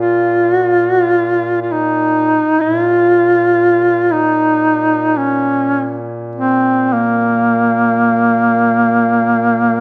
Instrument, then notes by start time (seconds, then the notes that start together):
duduk
Already playing: A#2 F4
0.54 F#4
0.69 F4
0.86 F#4
1.01 F4
1.62 F4
1.72 D#4
2.61 A#2 E4
2.80 F4
4.12 D#4
5.17 C#4
6.36 C4
6.94 A#3